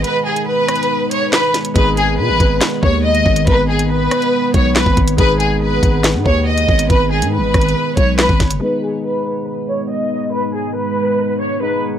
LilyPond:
<<
  \new Staff \with { instrumentName = "Violin section" } { \time 4/4 \key gis \minor \tempo 4 = 140 b'8 gis'8 b'4. cis''8 b'8 r8 | b'8 gis'8 b'4 r8 cis''8 dis''4 | b'8 gis'8 b'4. cis''8 b'8 r8 | b'8 gis'8 b'4 r8 cis''8 dis''4 |
b'8 gis'8 b'4. cis''8 b'8 r8 | b'8 gis'8 b'4 r8 cis''8 dis''4 | b'8 gis'8 b'4. cis''8 b'8 r8 | }
  \new Staff \with { instrumentName = "Grand piano" } { \time 4/4 \key gis \minor <gis b dis' gis'>1 | <gis b dis' gis'>1~ | <gis b dis' gis'>1 | <gis b dis' gis'>1~ |
<gis b dis' gis'>1 | <gis b dis'>1~ | <gis b dis'>2. <gis b dis'>4 | }
  \new Staff \with { instrumentName = "Ambient pad" } { \clef bass \time 4/4 \key gis \minor << { b1 | b1~ | b1~ | b1~ |
b1 | <gis, dis'>1~ | <gis, dis'>1 | } \\ { <dis gis>1~ | <dis gis>1~ | <dis gis>1 | <dis gis>1~ |
<dis gis>1 | <gis b>1~ | <gis b>1 | } >> }
  \new Staff \with { instrumentName = "808-style bass" } { \clef bass \time 4/4 \key gis \minor r1 | gis,,4 b,16 gis,,16 gis,,8 r8 dis,4 gis,,8 | gis,,4. r4 b,,8. gis,,16 gis,,8 | gis,,4. gis,,8. gis,16 dis,4 gis,,8 |
gis,,8. gis,16. gis,,16. gis,,8 r8 b,,8. gis,,8 fis,,16 | r1 | r1 | }
  \new DrumStaff \with { instrumentName = "Drums" } \drummode { \time 4/4 hh8. hh16 \tuplet 3/2 { r16 r16 r16 <hh ss>16 hh16 hh16 } r8 hh8 <hc sn>8 <hh sn>16 hh16 | <hh bd>8 hh8 r8 <hh bd>8 <hc hh sn>8 bd8 r16 hh16 bd16 hh16 | <hh bd>8. hh16 r8 <hh ss>16 hh16 r8 <hh bd>8 <hc sn>16 bd16 <hh bd>16 hh16 | <hh bd>8 hh8 r8 <hh bd>8 <hc hh sn>8 bd8 r16 hh16 bd16 hh16 |
<hh bd>8. hh16 \tuplet 3/2 { r16 r16 r16 <hh bd ss>16 hh16 hh16 } r8 <hh bd>8 <hc sn>16 bd16 <hh bd sn>16 hh16 | r4 r4 r4 r4 | r4 r4 r4 r4 | }
>>